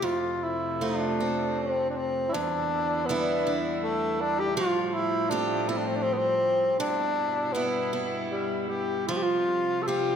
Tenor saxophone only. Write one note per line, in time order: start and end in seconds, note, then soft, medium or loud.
0.04 0.45 F4 medium
0.44 0.85 E4 medium
0.83 1.60 D4 medium
1.59 1.89 C4 medium
1.89 1.98 D4 medium
1.96 2.31 C4 medium
2.29 3.07 D4 medium
2.29 2.34 E4 medium
3.06 3.56 B3 medium
3.83 4.22 A3 medium
4.21 4.41 D4 medium
4.39 4.56 G4 medium
4.56 4.86 F4 medium
4.86 4.95 F4 medium
4.94 5.31 E4 medium
5.29 5.70 D4 medium
5.68 5.78 E4 medium
5.77 5.88 D4 medium
5.87 5.97 C4 medium
5.96 6.04 D4 medium
6.03 6.14 C4 medium
6.13 6.19 B3 medium
6.18 6.78 C4 medium
6.79 7.54 D4 medium
7.53 8.03 B3 medium
8.30 8.70 G3 medium
8.69 9.07 G4 medium
9.07 9.18 F4 medium
9.17 9.24 G4 medium
9.23 9.84 F4 medium
9.82 9.88 A4 medium
9.87 10.16 G4 medium